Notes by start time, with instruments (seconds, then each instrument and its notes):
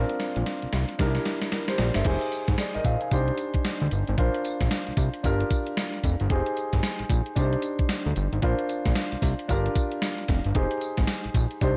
Already playing: grand piano C4 D4 F4 A#4
0.09 closed hi-hat
0.20 snare, closed hi-hat
0.36 analog synth bass A#1, closed hi-hat
0.46 snare, closed hi-hat
0.62 analog synth bass C2, closed hi-hat
0.73 analog synth bass C2, snare, open hi-hat
0.89 closed hi-hat
0.99 analog synth bass C2, grand piano D4 D#4 G4 A#4, kick, snare, closed hi-hat
1.06 grand piano E4
1.15 snare, closed hi-hat
1.25 snare, closed hi-hat
1.41 snare, closed hi-hat
1.52 grand piano E4 A#4, snare, closed hi-hat
1.68 grand piano G4 C5, snare, closed hi-hat
1.78 analog synth bass A#1, grand piano G4 D5, snare, closed hi-hat
1.94 analog synth bass G1, grand piano A#4 E5, snare, closed hi-hat
2.05 analog synth bass F1, grand piano D#4 G4 G#4 C5, kick, closed hi-hat, crash
2.21 closed hi-hat
2.31 closed hi-hat, tambourine
2.48 analog synth bass G#1, kick, snare, closed hi-hat
2.58 grand piano G#4 D5, snare, closed hi-hat, tambourine
2.74 analog synth bass A#1, grand piano A#4 D#5, closed hi-hat
2.85 analog synth bass A#1, grand piano C5 F5, kick, closed hi-hat, tambourine
3.01 grand piano D#5 G#5, closed hi-hat
3.11 analog synth bass C2, grand piano D4 D#4 G4 C5, kick, closed hi-hat, tambourine
3.28 closed hi-hat
3.38 closed hi-hat, tambourine
3.54 kick, closed hi-hat
3.65 snare, closed hi-hat, tambourine
3.80 analog synth bass D2, closed hi-hat
3.91 analog synth bass G1, closed hi-hat, tambourine
4.07 analog synth bass G#1, closed hi-hat
4.17 analog synth bass A#1, grand piano D4 F4 A#4 C5, kick, closed hi-hat
4.34 closed hi-hat
4.44 closed hi-hat, tambourine
4.60 analog synth bass A#1, kick, snare, closed hi-hat
4.71 snare, closed hi-hat, tambourine
4.87 analog synth bass C2, closed hi-hat
4.97 analog synth bass C2, kick, closed hi-hat, tambourine
5.14 closed hi-hat
5.23 analog synth bass G1, grand piano D4 F4 G4 A#4, kick, closed hi-hat, tambourine
5.40 closed hi-hat
5.51 kick, closed hi-hat, tambourine
5.67 closed hi-hat
5.77 snare, closed hi-hat, tambourine
5.93 closed hi-hat
6.03 analog synth bass F1, kick, closed hi-hat, tambourine
6.20 analog synth bass G1, closed hi-hat
6.29 analog synth bass F1, grand piano D#4 G4 G#4 C5, kick, closed hi-hat
6.46 closed hi-hat
6.57 closed hi-hat, tambourine
6.73 analog synth bass G#1, kick, snare, closed hi-hat
6.83 snare, closed hi-hat, tambourine
6.99 analog synth bass A#1, closed hi-hat
7.10 analog synth bass A#1, kick, closed hi-hat, tambourine
7.26 closed hi-hat
7.36 analog synth bass C2, grand piano D4 D#4 G4 C5, kick, closed hi-hat, tambourine
7.53 closed hi-hat
7.62 closed hi-hat, tambourine
7.79 kick, closed hi-hat
7.89 snare, closed hi-hat, tambourine
8.06 analog synth bass D2, closed hi-hat
8.16 analog synth bass G1, closed hi-hat, tambourine
8.33 analog synth bass G#1, closed hi-hat
8.42 analog synth bass A#1, grand piano D4 F4 A#4 C5, kick, closed hi-hat
8.59 closed hi-hat
8.69 closed hi-hat, tambourine
8.85 analog synth bass A#1, kick, snare, closed hi-hat
8.95 snare, closed hi-hat, tambourine
9.12 analog synth bass C2, closed hi-hat
9.22 analog synth bass C2, kick, open hi-hat, tambourine
9.39 closed hi-hat
9.48 analog synth bass G1, grand piano D4 F4 G4 A#4, kick, closed hi-hat, tambourine
9.66 closed hi-hat
9.75 kick, closed hi-hat, tambourine
9.92 closed hi-hat
10.02 snare, closed hi-hat, tambourine
10.18 closed hi-hat
10.28 analog synth bass F1, kick, snare, closed hi-hat, tambourine
10.44 analog synth bass G1, closed hi-hat
10.55 analog synth bass F1, grand piano D#4 G4 G#4 C5, kick, closed hi-hat
10.71 closed hi-hat
10.81 closed hi-hat, tambourine
10.97 analog synth bass G#1, kick, snare, closed hi-hat
11.07 snare, closed hi-hat, tambourine
11.24 analog synth bass A#1, closed hi-hat
11.34 analog synth bass A#1, kick, closed hi-hat, tambourine
11.51 closed hi-hat
11.61 analog synth bass C2, grand piano D4 D#4 G4 C5, kick, closed hi-hat, tambourine